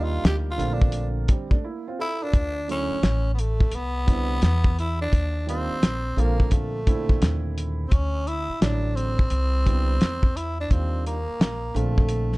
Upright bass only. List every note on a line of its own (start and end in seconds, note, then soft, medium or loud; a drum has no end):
0.00 0.21 D#2 medium
0.24 0.57 D2 medium
0.59 1.25 A#1 loud
2.33 2.88 D2 medium
2.90 muted upright bass stroke soft
3.03 3.69 A1 medium
3.72 4.39 C2 medium
4.42 5.09 E2 loud
5.12 5.67 D#2 medium
5.69 muted upright bass stroke soft
5.82 6.15 A#1 medium
6.17 6.83 A#1 medium
7.22 7.88 D#2 medium
7.92 8.46 D2 medium
8.49 muted upright bass stroke soft
8.61 9.28 A1 medium
9.31 9.97 C2 loud
10.00 10.67 E2 medium
10.71 11.25 D#2 medium
11.28 muted upright bass stroke soft
11.40 11.73 A#1 medium
11.74 12.38 A#1 medium